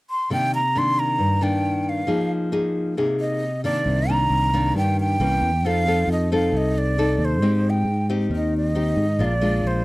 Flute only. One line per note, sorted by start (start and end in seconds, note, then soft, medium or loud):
0.10 0.30 C6 medium
0.33 0.52 G5 medium
0.55 0.80 A#5 medium
0.78 1.01 C6 medium
0.99 1.44 A#5 medium
1.43 1.90 G5 medium
1.89 2.32 F5 medium
3.20 3.61 D#5 medium
3.65 4.13 D5 medium
4.11 4.76 A#5 medium
4.78 4.97 G5 medium
5.00 5.68 G5 medium
5.66 6.10 F5 loud
6.12 6.31 D#5 medium
6.34 6.58 F5 medium
6.57 6.80 D#5 medium
6.78 7.26 D5 medium
7.25 7.71 C5 medium
7.70 8.07 G5 medium
8.36 8.54 D#5 medium
8.57 9.26 D#5 medium
9.24 9.68 D5 medium
9.67 9.85 C5 medium